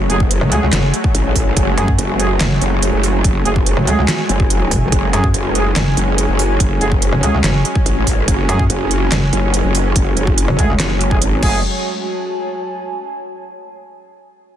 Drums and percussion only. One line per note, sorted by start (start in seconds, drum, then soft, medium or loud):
0.10 closed hi-hat medium
0.20 kick loud
0.31 closed hi-hat medium
0.52 closed hi-hat medium
0.73 snare loud
0.73 clap loud
0.73 closed hi-hat medium
0.94 closed hi-hat medium
1.04 kick loud
1.15 closed hi-hat medium
1.36 kick medium
1.36 open hi-hat medium
1.57 kick loud
1.57 closed hi-hat medium
1.78 closed hi-hat soft
1.88 kick loud
1.99 closed hi-hat medium
2.20 closed hi-hat medium
2.41 snare loud
2.41 clap medium
2.41 closed hi-hat medium
2.62 closed hi-hat medium
2.83 closed hi-hat medium
3.03 open hi-hat medium
3.24 kick loud
3.24 closed hi-hat medium
3.45 closed hi-hat soft
3.56 kick loud
3.66 closed hi-hat medium
3.87 closed hi-hat medium
4.08 snare loud
4.08 clap medium
4.08 closed hi-hat medium
4.29 closed hi-hat medium
4.40 kick loud
4.50 closed hi-hat medium
4.71 kick medium
4.71 open hi-hat medium
4.92 kick loud
4.92 closed hi-hat medium
5.13 closed hi-hat soft
5.24 kick loud
5.34 closed hi-hat medium
5.55 closed hi-hat medium
5.76 snare loud
5.76 clap medium
5.76 closed hi-hat medium
5.97 closed hi-hat medium
6.18 closed hi-hat medium
6.39 open hi-hat medium
6.60 kick loud
6.60 closed hi-hat medium
6.81 closed hi-hat medium
6.92 kick loud
7.02 closed hi-hat medium
7.23 closed hi-hat medium
7.44 snare loud
7.44 clap medium
7.44 closed hi-hat medium
7.65 closed hi-hat medium
7.75 kick loud
7.86 closed hi-hat medium
8.07 kick medium
8.07 open hi-hat loud
8.28 kick loud
8.28 closed hi-hat medium
8.49 closed hi-hat medium
8.59 kick loud
8.70 closed hi-hat medium
8.91 closed hi-hat medium
9.12 snare loud
9.12 clap medium
9.12 closed hi-hat medium
9.33 closed hi-hat medium
9.54 closed hi-hat medium
9.75 open hi-hat loud
9.96 kick loud
9.96 closed hi-hat medium
10.17 closed hi-hat medium
10.27 kick loud
10.38 closed hi-hat medium
10.59 kick medium
10.59 closed hi-hat medium
10.80 snare loud
10.80 clap medium
10.80 closed hi-hat medium
11.01 closed hi-hat medium
11.11 kick loud
11.22 closed hi-hat medium
11.43 kick loud
11.43 crash medium